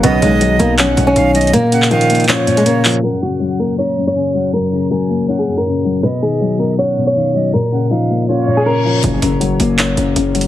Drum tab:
HH |x-----------x-----------x-----------x-----------x-----------x-----------x-----------x---x---x---|x-----------x-----------x-----x-----x--x--x--x--x-----------x-----x-----x-----------o-----------|------------------------------------------------------------------------------------------------|------------------------------------------------------------------------------------------------|
CP |------------------------------------------------x-----------------------------------------------|------------------x-----------------------------x-----------------------------------x-----------|------------------------------------------------------------------------------------------------|------------------------------------------------------------------------------------------------|

HH |------------------------------------------------------------------------------------------------|------------------------------------------------------------------------------------------------|x-----------x-----------x-----------x-----------x-----------x-----------x-----------x---x-------|
CP |------------------------------------------------------------------------------------------------|------------------------------------------------------------------------------------------------|------------------------------------------------x-----------------------------------------------|